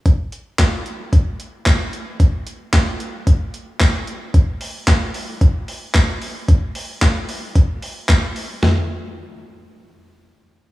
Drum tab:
HH |xxxxxxxx|xxxxxxxx|xoxoxoxo|xoxoxoxo|
CP |--x---x-|--x---x-|--x---x-|--x---x-|
SD |--o---o-|--o---o-|--o---o-|--o---o-|
FT |--------|--------|--------|--------|
BD |o-o-o-o-|o-o-o-o-|o-o-o-o-|o-o-o-o-|

HH |--------|
CP |--------|
SD |o-------|
FT |o-------|
BD |--------|